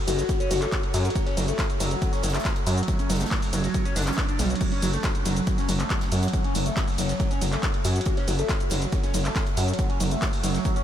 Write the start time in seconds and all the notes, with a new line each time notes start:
0.07 F#1 F#3, closed hi-hat, open hi-hat, ride, shaker
0.18 F#3, snare, closed hi-hat, shaker
0.29 F#3, kick, closed hi-hat, ride, shaker
0.40 C#4, closed hi-hat, shaker
0.51 F#1 F#3, closed hi-hat, open hi-hat, ride, shaker
0.62 A3, snare, clap, closed hi-hat, shaker
0.72 kick, clap, closed hi-hat, ride, shaker
0.83 closed hi-hat
0.94 F#2 F#3, closed hi-hat, open hi-hat, ride, shaker
1.05 F#3, closed hi-hat, shaker
1.10 closed hi-hat
1.15 F#3, kick, closed hi-hat, ride, shaker
1.26 C#4, snare, closed hi-hat
1.37 F#1 F#3, closed hi-hat, open hi-hat, ride, shaker
1.48 A3, closed hi-hat, shaker
1.59 kick, snare, clap, closed hi-hat, ride, shaker
1.70 closed hi-hat, shaker
1.80 F#1 F#3, closed hi-hat, open hi-hat, ride, shaker
1.91 F#3, closed hi-hat, shaker
2.02 F#3, kick, closed hi-hat, ride, shaker
2.13 C#4, snare, closed hi-hat, shaker
2.23 F#1 F#3, snare, closed hi-hat, open hi-hat, ride, shaker
2.29 snare, closed hi-hat
2.34 A3, snare, clap, closed hi-hat, shaker
2.39 snare, closed hi-hat
2.45 kick, snare, clap, closed hi-hat, ride, shaker
2.56 closed hi-hat
2.67 F#2 F#3, closed hi-hat, open hi-hat, ride, shaker
2.78 F#3, closed hi-hat, shaker
2.83 closed hi-hat
2.88 F#3, kick, closed hi-hat, ride, shaker
2.99 C#4, closed hi-hat, shaker
3.10 F#1 F#3, snare, closed hi-hat, open hi-hat, ride, shaker
3.15 snare, closed hi-hat
3.20 A3, snare, closed hi-hat, shaker
3.26 snare, closed hi-hat
3.31 kick, snare, clap, closed hi-hat, ride, shaker
3.42 open hi-hat, shaker
3.53 F#1 F#3, closed hi-hat, open hi-hat, ride, shaker
3.64 F#3, snare, closed hi-hat, shaker
3.74 F#3, kick, closed hi-hat, ride, shaker
3.85 C#4, closed hi-hat, shaker
3.96 F#1 D4, snare, closed hi-hat, open hi-hat, ride, shaker
4.01 snare, closed hi-hat
4.07 C#4, snare, clap, closed hi-hat, shaker
4.13 snare, closed hi-hat
4.18 kick, snare, clap, closed hi-hat, ride, shaker
4.29 D4, closed hi-hat, shaker
4.39 B1 G3, snare, closed hi-hat, open hi-hat, ride, shaker
4.50 F#3, closed hi-hat, shaker
4.55 closed hi-hat
4.61 F#3, kick, closed hi-hat, ride, crash, shaker
4.72 C#4, snare, closed hi-hat
4.82 F#1 F#3, closed hi-hat, open hi-hat, ride, shaker
4.93 A3, closed hi-hat, shaker
5.03 kick, snare, clap, closed hi-hat, ride, shaker
5.15 closed hi-hat, shaker
5.26 F#1 F#3, closed hi-hat, open hi-hat, ride, shaker
5.37 F#3, closed hi-hat, shaker
5.47 F#3, kick, closed hi-hat, ride, shaker
5.58 C#4, snare, closed hi-hat, shaker
5.68 F#1 F#3, snare, closed hi-hat, open hi-hat, ride, shaker
5.80 A3, clap, closed hi-hat, shaker
5.90 kick, clap, closed hi-hat, ride, shaker
6.01 snare, closed hi-hat
6.12 F#2 F#3, closed hi-hat, open hi-hat, ride, shaker
6.23 F#3, closed hi-hat, shaker
6.28 closed hi-hat
6.33 F#3, kick, closed hi-hat, ride, shaker
6.44 C#4, closed hi-hat
6.55 F#1 F#3, closed hi-hat, open hi-hat, ride, shaker
6.66 A3, closed hi-hat, shaker
6.77 kick, snare, clap, closed hi-hat, ride, shaker
6.88 open hi-hat, shaker
6.98 F#1 F#3, closed hi-hat, open hi-hat, ride, shaker
7.09 F#3, snare, closed hi-hat, shaker
7.20 F#3, kick, closed hi-hat, ride, shaker
7.31 C#4, closed hi-hat, shaker
7.42 F#1 F#3, closed hi-hat, open hi-hat, ride, shaker
7.52 A3, snare, clap, closed hi-hat, shaker
7.63 kick, clap, closed hi-hat, ride, shaker
7.74 closed hi-hat
7.84 F#2 F#3, closed hi-hat, open hi-hat, ride, shaker
7.96 F#3, closed hi-hat, shaker
8.01 closed hi-hat
8.05 F#3, kick, closed hi-hat, ride, shaker
8.17 C#4, snare, closed hi-hat
8.27 F#1 F#3, closed hi-hat, open hi-hat, ride, shaker
8.39 A3, closed hi-hat, shaker
8.49 kick, snare, clap, closed hi-hat, ride, shaker
8.60 closed hi-hat, shaker
8.70 F#1 F#3, closed hi-hat, open hi-hat, ride, shaker
8.82 F#3, closed hi-hat, shaker
8.92 F#3, kick, closed hi-hat, ride, shaker
9.03 C#4, snare, closed hi-hat, shaker
9.14 F#1 F#3, closed hi-hat, open hi-hat, ride, shaker
9.25 A3, snare, clap, closed hi-hat, shaker
9.36 kick, snare, clap, closed hi-hat, ride, shaker
9.47 closed hi-hat
9.57 F#2 F#3, closed hi-hat, open hi-hat, ride, shaker
9.68 F#3, closed hi-hat, shaker
9.73 closed hi-hat
9.79 F#3, kick, closed hi-hat, ride, shaker
9.90 C#4, closed hi-hat
10.00 F#1 F#3, closed hi-hat, open hi-hat, ride, shaker
10.11 A3, closed hi-hat, shaker
10.22 kick, snare, clap, closed hi-hat, ride, shaker
10.33 open hi-hat, shaker
10.44 F#1 F#3, closed hi-hat, open hi-hat, ride, shaker
10.55 F#3, snare, closed hi-hat, shaker
10.65 F#3, kick, closed hi-hat, ride, shaker
10.76 C#4, closed hi-hat, shaker